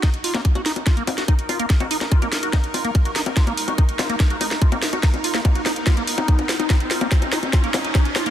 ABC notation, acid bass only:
X:1
M:4/4
L:1/16
Q:1/4=144
K:Ebm
V:1 name="Acid bass"
E z F B, z G E z F B, z G E z F B, | z G E z F B, z G E z F B, z G E z | F B, z G E z F B, z G E z F B, z G | E z F B, z G E z F B, z E E2 F E |
E z F B, z E E z F B, z E E z F B, |]